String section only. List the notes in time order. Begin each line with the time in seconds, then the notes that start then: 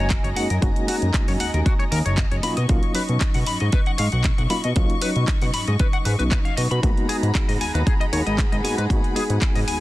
Already playing: F#4 D#5 G#5 A#5
2.43 C#6
6.83 G#4 F#5 A#5 B5
8.90 G#5